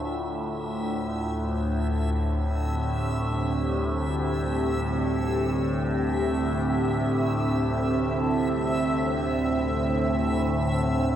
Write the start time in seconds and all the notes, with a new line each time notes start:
Already playing: D2 A2 D4 F4 E5
2.06 D3
2.25 C4
2.60 G4
5.34 E5
10.62 A4